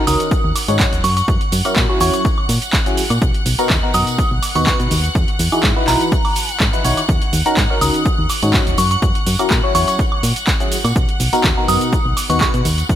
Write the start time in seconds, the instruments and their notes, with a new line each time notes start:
Already playing: string section F#5 F#6
0.07 fm bass C#2, fm electric piano D#3 C#4 D#4 F#4 A#4, synth bell D#6, open hi-hat, tambourine, shaker
0.20 closed hi-hat, tambourine, shaker
0.31 kick, tambourine, shaker
0.44 fm bass D#2
0.56 open hi-hat, tambourine, high woodblock, shaker
0.68 fm bass G#2, fm electric piano D#3 C#4 D#4 F#4 C#5, closed hi-hat, tambourine, shaker
0.79 kick, clap, shaker
0.93 fm bass D#1, closed hi-hat, shaker
1.04 fm bass F#2, synth bell C#6, open hi-hat, tambourine, shaker
1.17 synth bell C#6, closed hi-hat, tambourine, shaker
1.28 fm bass F#2, kick, tambourine, shaker
1.41 closed hi-hat
1.52 fm bass F#2, open hi-hat, tambourine, shaker
1.65 fm electric piano F#3 C#4 E4 F#4 A#4, closed hi-hat, tambourine, high woodblock, shaker
1.76 fm bass A#2, kick, clap, tambourine, shaker
1.89 fm electric piano F#3 C#4 E4 F#4 C#5
2.00 fm bass E2, fm electric piano F#3 C#4 E4 F#4 C#5, synth bell C#6, open hi-hat, tambourine, shaker
2.13 synth bell C#6, closed hi-hat, tambourine, shaker
2.25 kick, tambourine, shaker
2.38 high woodblock
2.49 fm bass A#2, open hi-hat, tambourine, shaker
2.62 closed hi-hat, tambourine, shaker
2.73 kick, clap, shaker
2.86 fm electric piano F#3 C#4 E4 F#4 G#4, closed hi-hat, shaker
2.97 open hi-hat, tambourine, shaker
3.10 fm bass A#2, closed hi-hat, tambourine, high woodblock, shaker
3.22 fm bass B1, kick, tambourine, shaker
3.34 closed hi-hat
3.46 fm bass B1, open hi-hat, tambourine, shaker
3.59 fm electric piano B2 B3 D#4 F#4 A#4, closed hi-hat, tambourine, shaker
3.70 fm bass D#2, kick, clap, shaker
3.83 fm electric piano B2 B3 D#4 F#4 A#4
3.94 fm bass F#2, fm electric piano B2 B3 D#4 F#4 A#4, synth bell D#6, open hi-hat, tambourine, shaker
4.07 closed hi-hat, tambourine, shaker
4.18 kick, tambourine, shaker
4.31 fm bass B1
4.43 open hi-hat, tambourine, high woodblock, shaker
4.55 fm bass D#2, fm electric piano B2 B3 D#4 F#4 B4, synth bell C#6, closed hi-hat, tambourine, shaker
4.67 fm electric piano B2 B3 D#4 F#4 B4, synth bell C#6, kick, clap, shaker
4.80 fm bass B2, closed hi-hat, shaker
4.91 fm bass D#2, open hi-hat, tambourine, shaker
5.04 closed hi-hat, tambourine, shaker
5.15 fm bass E2, kick, tambourine, shaker
5.28 closed hi-hat
5.39 fm bass E2, open hi-hat, tambourine, shaker
5.52 fm electric piano E3 D#4 E4 F#4 G#4, closed hi-hat, tambourine, high woodblock, shaker
5.63 fm bass G#2, kick, clap, shaker
5.76 fm electric piano E3 D#4 E4 F#4 B4
5.88 fm bass B1, fm electric piano E3 D#4 E4 F#4 B4, synth bell A#5, clap, open hi-hat, tambourine, shaker
6.01 closed hi-hat, tambourine, shaker
6.12 kick, tambourine, shaker
6.25 open hi-hat, high woodblock
6.36 open hi-hat, tambourine, shaker
6.49 closed hi-hat, tambourine, shaker
6.60 fm bass G#2, kick, clap, shaker
6.73 fm electric piano E3 D#4 E4 F#4 B4, closed hi-hat, shaker
6.85 fm bass B1, fm electric piano D#3 D#4 E4 F#4 C#5, open hi-hat, tambourine, shaker
6.97 closed hi-hat, tambourine, high woodblock, shaker
7.09 fm bass D#2, kick, tambourine, shaker
7.22 closed hi-hat
7.33 fm bass D#2, open hi-hat, tambourine, shaker
7.46 fm electric piano D#3 C#4 D#4 F#4 A#4, closed hi-hat, tambourine, shaker
7.57 fm bass G#2, kick, clap, tambourine, shaker
7.70 fm electric piano D#3 C#4 D#4 F#4 A#4
7.81 fm bass C#2, fm electric piano D#3 C#4 D#4 F#4 A#4, synth bell D#6, open hi-hat, tambourine, shaker
7.93 closed hi-hat, tambourine, shaker
8.06 kick, tambourine, shaker
8.19 fm bass D#2
8.29 open hi-hat, tambourine, high woodblock, shaker
8.42 fm bass G#2, fm electric piano D#3 C#4 D#4 F#4 C#5, closed hi-hat, tambourine, shaker
8.54 kick, clap, tambourine, shaker
8.67 fm bass D#1, closed hi-hat, shaker
8.78 fm bass F#2, synth bell C#6, open hi-hat, tambourine, shaker
8.91 synth bell C#6, closed hi-hat, tambourine, shaker
9.02 fm bass F#2, kick, tambourine, shaker
9.15 closed hi-hat
9.26 fm bass F#2, open hi-hat, tambourine, shaker
9.39 fm electric piano F#3 C#4 E4 F#4 A#4, closed hi-hat, tambourine, high woodblock, shaker
9.50 fm bass A#2, kick, clap, tambourine, shaker
9.64 fm electric piano F#3 C#4 E4 F#4 C#5
9.75 fm bass E2, fm electric piano F#3 C#4 E4 F#4 C#5, synth bell C#6, open hi-hat, tambourine, shaker
9.88 synth bell C#6, closed hi-hat, tambourine, shaker
9.99 kick, tambourine, shaker
10.12 high woodblock
10.23 fm bass A#2, open hi-hat, tambourine, shaker
10.36 closed hi-hat, tambourine, shaker
10.47 kick, clap, shaker
10.60 fm electric piano F#3 C#4 E4 F#4 G#4, closed hi-hat, shaker
10.72 open hi-hat, tambourine, shaker
10.85 fm bass A#2, closed hi-hat, tambourine, high woodblock, shaker
10.95 fm bass B1, kick, tambourine, shaker
11.09 closed hi-hat
11.20 fm bass B1, open hi-hat, tambourine, shaker
11.33 fm electric piano B2 B3 D#4 F#4 A#4, closed hi-hat, tambourine, shaker
11.44 fm bass D#2, kick, clap, shaker
11.57 fm electric piano B2 B3 D#4 F#4 A#4
11.68 fm bass F#2, fm electric piano B2 B3 D#4 F#4 A#4, synth bell D#6, open hi-hat, tambourine, shaker
11.81 closed hi-hat, tambourine, shaker
11.93 kick, tambourine, shaker
12.05 fm bass B1
12.17 open hi-hat, tambourine, high woodblock, shaker
12.30 fm bass D#2, fm electric piano B2 B3 D#4 F#4 B4, synth bell C#6, closed hi-hat, tambourine, shaker
12.41 fm electric piano B2 B3 B4, synth bell C#6, kick, clap, shaker
12.54 fm bass B2, closed hi-hat, shaker
12.65 fm bass D#2, open hi-hat, tambourine, shaker
12.78 closed hi-hat, tambourine, shaker
12.89 fm bass E2, kick, shaker